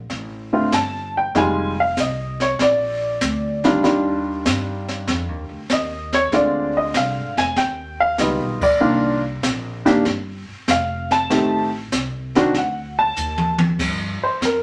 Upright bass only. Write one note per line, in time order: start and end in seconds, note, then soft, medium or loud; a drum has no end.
0.10 0.70 A1 medium
0.72 1.33 G1 medium
1.35 1.95 F1 medium
1.97 2.57 C2 medium
2.59 3.19 A#1 medium
3.21 3.82 D2 loud
3.84 4.44 D#2 medium
4.46 5.06 G2 medium
5.08 5.29 F2 medium
5.29 5.48 D#2 soft
5.49 5.69 D2 medium
5.70 6.30 D#2 medium
6.32 6.93 D2 medium
6.94 7.16 C2 medium
7.15 7.35 G#1 medium
7.36 7.55 F1 medium
7.56 8.17 D#2 medium
8.18 8.39 C#2 loud
8.39 8.59 B1 medium
8.59 8.79 G1 medium
8.80 9.41 C2 medium
9.43 10.04 A#1 medium
10.05 10.45 G1 medium
10.49 muted upright bass stroke soft
10.68 11.28 F1 medium
11.30 11.90 A1 medium
11.92 12.52 C2 medium
12.55 13.15 D2 medium
13.17 13.77 D#2 medium
13.79 14.19 G2 medium
14.22 muted upright bass stroke soft
14.41 14.63 F2 medium